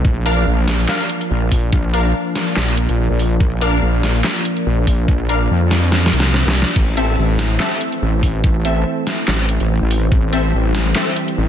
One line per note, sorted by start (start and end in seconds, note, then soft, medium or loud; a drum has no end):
0.05 0.45 A#1 loud
0.05 6.72 F3 medium
0.05 6.72 A#3 medium
0.05 6.72 D4 medium
0.05 kick loud
0.26 0.41 D4 loud
0.26 0.41 A#4 medium
0.26 0.41 F5 loud
0.26 closed hi-hat medium
0.47 0.87 A#1 loud
0.68 snare medium
0.68 closed hi-hat medium
0.89 0.99 D4 loud
0.89 0.99 A#4 medium
0.89 0.99 F5 loud
0.89 snare loud
0.89 clap medium
1.10 closed hi-hat medium
1.21 closed hi-hat soft
1.31 1.50 A#1 loud
1.52 1.71 A#1 loud
1.52 kick medium
1.52 open hi-hat medium
1.73 2.13 A#1 loud
1.73 kick loud
1.94 2.04 D4 medium
1.94 2.04 A#4 medium
1.94 2.04 F5 loud
1.94 closed hi-hat medium
2.36 snare medium
2.36 closed hi-hat medium
2.56 2.87 A#1 loud
2.56 snare loud
2.56 clap medium
2.77 closed hi-hat medium
2.89 3.08 A#1 medium
2.89 closed hi-hat soft
3.10 3.39 A#1 loud
3.19 open hi-hat medium
3.40 3.81 A#1 loud
3.40 kick loud
3.61 3.77 D4 loud
3.61 3.77 A#4 medium
3.61 3.77 F5 loud
3.61 closed hi-hat medium
3.82 4.23 A#1 loud
4.03 snare medium
4.03 closed hi-hat medium
4.24 snare loud
4.24 clap medium
4.45 closed hi-hat medium
4.57 closed hi-hat soft
4.66 4.86 A#1 loud
4.87 5.07 A#1 loud
4.87 kick medium
4.87 open hi-hat medium
5.08 5.49 A#1 loud
5.08 kick loud
5.29 5.40 D4 medium
5.29 5.40 A#4 medium
5.29 5.40 F5 loud
5.29 closed hi-hat medium
5.50 6.12 F2 loud
5.71 snare medium
5.71 open hi-hat medium
5.92 snare medium
6.06 snare medium
6.13 6.44 C2 loud
6.13 closed hi-hat medium
6.20 snare medium
6.25 closed hi-hat soft
6.34 snare medium
6.46 6.65 C2 loud
6.46 snare loud
6.55 open hi-hat loud
6.62 snare loud
6.76 7.17 A1 loud
6.76 11.48 E3 medium
6.76 10.08 A3 medium
6.76 11.48 C4 medium
6.76 kick loud
6.76 crash medium
6.97 7.13 C4 loud
6.97 7.13 A4 medium
6.97 7.13 E5 loud
6.97 closed hi-hat medium
7.18 7.58 A1 loud
7.39 snare medium
7.39 closed hi-hat medium
7.60 7.70 C4 loud
7.60 7.70 A4 medium
7.60 7.70 E5 loud
7.60 snare loud
7.60 clap loud
7.81 closed hi-hat medium
7.92 closed hi-hat soft
8.02 8.21 A1 loud
8.23 8.42 A1 medium
8.23 kick medium
8.23 open hi-hat medium
8.44 8.84 A1 loud
8.44 kick loud
8.65 8.75 C4 medium
8.65 8.75 A4 medium
8.65 8.75 E5 loud
8.65 closed hi-hat medium
9.07 snare medium
9.07 closed hi-hat medium
9.28 9.58 A1 loud
9.28 snare loud
9.28 clap loud
9.49 closed hi-hat medium
9.60 9.79 A1 medium
9.60 closed hi-hat soft
9.81 10.10 A1 loud
9.91 open hi-hat medium
10.12 10.52 A1 loud
10.12 11.48 G3 medium
10.12 kick loud
10.33 10.48 C4 loud
10.33 10.48 A4 medium
10.33 10.48 E5 loud
10.33 closed hi-hat medium
10.54 10.94 A1 loud
10.75 snare medium
10.75 closed hi-hat medium
10.96 11.06 C4 loud
10.96 11.06 A4 medium
10.96 11.06 E5 loud
10.96 snare loud
10.96 clap loud
11.17 closed hi-hat medium
11.28 closed hi-hat soft
11.38 11.48 A1 loud